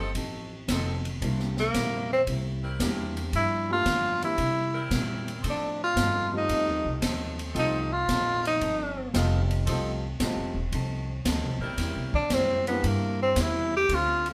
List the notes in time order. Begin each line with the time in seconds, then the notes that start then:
Already playing: G1
0.00 C4
0.15 A1 F3 C4 D#4 A4, kick, ride
0.68 F1 F3 C4 D#4 A4, kick, snare, hi-hat pedal, ride
1.05 ride
1.21 C2 C3 G3 A#3 C4 D4 E4, kick, ride
1.39 snare
1.57 A#3, snare
1.74 A#1 C3 G3 A#3 E4, kick, snare, hi-hat pedal, ride
2.13 C4
2.27 C2 C3 G3 A#3 E4, kick, ride
2.62 G3 C4 E4 A#4
2.79 E2 C3 G3 A#3 C4 D4 E4 G4, kick, snare, hi-hat pedal, ride
3.17 ride
3.33 G2 F3 A#3 E4, kick, ride
3.37 D4
3.69 G3 A3 A#3 D4 F4
3.85 G2 D3 F3 A#3 D4, kick, snare, hi-hat pedal, ride
4.22 G3 A#3 C4 D4 E4 G4, ride
4.38 C3 G3 A#3 E4, kick, ride
4.73 G3 C4 E4 A#4
4.91 A#2 C3 G3 A#3 E4, kick, snare, hi-hat pedal, ride
5.28 ride
5.41 A2 F3 C4 D#4 A4, kick, ride
5.46 D4 D#4 A4
5.84 F4
5.96 G2 F3 C4 D#4 A4, kick, snare, hi-hat pedal, ride
6.32 G3 A3 C4 D#4 F4
6.38 D#4
6.49 F2 F3 C4 D#4 A4, kick, ride
6.67 D#2
6.85 C2
7.01 D#2 F3 C4 D#4 A4, kick, snare, hi-hat pedal, ride
7.39 ride
7.53 C2 F3 G3 A3 C4 D#4 F4 A4, kick, ride
7.57 D#4 A4
7.93 F4
8.08 A#1 F3 C4 D#4 A4, kick, snare, hi-hat pedal, ride
8.45 D#4, ride
8.61 G1 F3 C4 D#4 A4, kick, ride
9.13 F1 F3 G3 A3 C4 D#4 F4 A4, kick, snare, hi-hat pedal, ride
9.51 ride
9.65 C2 F3 G3 A3 C4 D#4 F4 A4, kick, ride
9.69 C4 D#4 A4
10.20 A1 F3 G3 A3 C4 D#4 F4 A4, kick, snare, hi-hat pedal, ride
10.37 F1
10.54 D#1
10.72 C2 F3 C4 D#4 A4, kick, ride
11.25 D2 F3 C4 D#4 A4, kick, snare, hi-hat pedal, ride
11.42 C2
11.59 A1 G3 C4 E4 A#4
11.77 E2 C3 G3 A#3 E4, kick, snare, ride
11.95 C2
12.13 A#1 D4, kick
12.30 F#2 C3 G3 A#3 C4 E4, kick, snare, hi-hat pedal, ride
12.67 G3 A#3 B3 C4 D4 E4, ride
12.83 G2 C3 G3 A#3 E4, kick, ride
12.87 A#3
13.23 C4
13.36 E2 C3 G3 A#3 E4, kick, snare, hi-hat pedal, ride
13.41 E4
13.76 G4
13.88 D2 D3 F3 A3 C4 D4 F4 A4, kick, ride
13.95 F4
14.26 ride